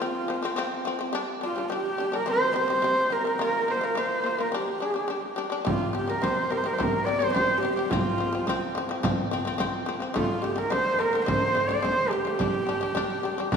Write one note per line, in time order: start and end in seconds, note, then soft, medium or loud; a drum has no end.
0.00 0.23 F3 medium
0.00 0.24 C4 medium
0.00 0.86 F4 medium
0.28 0.41 F3 medium
0.28 0.41 C4 medium
0.42 0.55 F3 medium
0.42 0.56 C4 medium
0.56 0.80 F3 loud
0.56 0.81 C4 loud
0.85 0.97 F3 medium
0.85 0.98 C4 medium
0.99 1.11 F3 medium
0.99 1.12 C4 medium
1.13 1.36 G3 loud
1.13 1.37 D4 loud
1.41 1.53 G3 medium
1.41 1.55 D4 medium
1.41 1.70 F4 medium
1.56 1.68 G3 medium
1.56 1.69 D4 medium
1.70 1.93 G3 medium
1.70 1.94 D4 medium
1.70 2.16 G4 medium
1.98 2.10 G3 medium
1.98 2.11 D4 medium
2.12 2.24 G3 medium
2.12 2.25 D4 medium
2.12 2.28 A#4 medium
2.26 2.49 C3 medium
2.26 2.50 G3 medium
2.31 2.55 C5 medium
2.54 2.66 C3 medium
2.54 2.67 G3 medium
2.54 3.14 C5 medium
2.68 2.80 C3 medium
2.68 2.81 G3 medium
2.82 3.06 C3 medium
2.82 3.07 G3 medium
3.10 3.23 C3 medium
3.10 3.24 G3 medium
3.10 3.41 A#4 medium
3.25 3.37 C3 medium
3.25 3.38 G3 medium
3.39 3.62 A#3 medium
3.39 3.64 F4 medium
3.39 3.73 A#4 medium
3.68 3.80 A#3 medium
3.68 3.81 F4 medium
3.68 3.86 C5 medium
3.81 3.93 A#3 medium
3.81 3.94 F4 medium
3.81 4.00 A#4 medium
3.95 4.19 A#3 medium
3.95 4.20 F4 medium
3.95 4.42 C5 medium
4.24 4.36 A#3 medium
4.24 4.37 F4 medium
4.38 4.50 A#3 medium
4.38 4.51 F4 medium
4.38 4.54 A#4 medium
4.52 4.75 G3 medium
4.52 4.76 D4 medium
4.57 5.36 G4 medium
4.80 4.92 G3 medium
4.80 4.93 D4 medium
4.94 5.06 G3 medium
4.94 5.07 D4 medium
5.08 5.31 G3 medium
5.08 5.32 D4 medium
5.36 5.48 G3 medium
5.36 5.49 D4 medium
5.50 5.62 G3 medium
5.50 5.63 D4 medium
5.65 5.88 C3 medium
5.65 5.89 G3 medium
5.65 5.93 F4 medium
5.65 frame drum medium
5.93 6.05 C3 medium
5.93 6.06 G3 medium
5.93 frame drum soft
5.97 6.11 G4 medium
6.07 6.19 C3 medium
6.07 6.20 G3 medium
6.07 6.24 A#4 medium
6.22 6.45 C3 medium
6.22 6.45 G3 loud
6.22 6.52 C5 medium
6.22 frame drum medium
6.50 6.62 C3 medium
6.50 6.63 G3 medium
6.50 6.59 A#4 medium
6.50 frame drum soft
6.57 6.68 C5 medium
6.64 6.75 C3 medium
6.64 6.76 G3 medium
6.64 6.75 A#4 medium
6.73 6.84 C5 medium
6.78 7.01 C3 medium
6.78 7.02 G3 medium
6.78 frame drum medium
6.83 7.08 A#4 medium
7.06 7.18 C3 medium
7.06 7.19 G3 medium
7.06 7.20 D5 medium
7.19 7.32 C3 medium
7.19 7.33 G3 medium
7.19 7.33 C5 medium
7.33 7.57 C3 medium
7.33 7.58 G3 medium
7.33 7.60 C5 medium
7.33 frame drum medium
7.61 7.74 C3 medium
7.61 7.75 G3 medium
7.61 7.75 G4 medium
7.61 frame drum soft
7.76 7.88 C3 medium
7.76 7.89 G3 medium
7.76 7.92 G4 medium
7.90 8.13 F3 medium
7.90 8.14 C4 medium
7.90 8.75 F4 medium
7.90 frame drum medium
8.18 8.30 F3 medium
8.18 8.31 C4 medium
8.18 frame drum soft
8.32 8.44 F3 medium
8.32 8.45 C4 medium
8.47 8.70 F3 medium
8.47 8.71 C4 loud
8.47 frame drum medium
8.75 8.86 F3 medium
8.75 8.88 C4 medium
8.75 frame drum soft
8.89 9.00 F3 medium
8.89 9.01 C4 medium
9.03 9.26 F3 loud
9.03 9.27 C4 loud
9.03 frame drum medium
9.31 9.43 F3 medium
9.31 9.44 C4 medium
9.45 9.57 F3 medium
9.45 9.58 C4 medium
9.58 9.81 F3 loud
9.58 9.82 C4 loud
9.58 frame drum medium
9.86 9.98 F3 medium
9.86 9.99 C4 medium
9.86 frame drum soft
10.00 10.12 F3 medium
10.00 10.13 C4 medium
10.14 10.37 D3 medium
10.14 10.38 A3 loud
10.14 10.44 F4 medium
10.14 frame drum medium
10.42 10.54 D3 medium
10.42 10.55 A3 medium
10.42 10.59 G4 medium
10.42 frame drum soft
10.56 10.68 D3 medium
10.56 10.69 A3 medium
10.56 10.72 A#4 medium
10.70 10.94 D3 medium
10.70 10.94 A3 loud
10.70 11.01 C5 medium
10.70 frame drum soft
10.99 11.10 D3 medium
10.99 11.12 A3 medium
10.99 11.25 A#4 medium
10.99 frame drum soft
11.13 11.25 D3 medium
11.13 11.26 A3 medium
11.26 11.50 D3 medium
11.26 11.51 A3 medium
11.26 11.70 C5 medium
11.26 frame drum medium
11.55 11.67 D3 medium
11.55 11.68 A3 medium
11.69 11.81 D3 medium
11.69 11.81 A3 medium
11.69 11.84 D5 medium
11.82 12.06 D3 medium
11.82 12.07 A3 medium
11.82 12.12 C5 medium
11.82 frame drum medium
12.10 12.23 D3 medium
12.10 12.24 A3 medium
12.10 13.57 G4 medium
12.10 frame drum soft
12.25 12.37 D3 medium
12.25 12.38 A3 medium
12.39 12.62 G3 medium
12.39 12.63 D4 medium
12.39 frame drum medium
12.67 12.79 G3 medium
12.67 12.80 D4 medium
12.67 frame drum soft
12.81 12.93 G3 medium
12.81 12.94 D4 medium
12.95 13.18 G3 loud
12.95 13.19 D4 loud
12.95 frame drum medium
13.23 13.35 G3 medium
13.23 13.36 D4 medium
13.23 frame drum soft
13.38 13.49 G3 medium
13.38 13.50 D4 medium
13.52 13.57 G3 loud
13.52 frame drum medium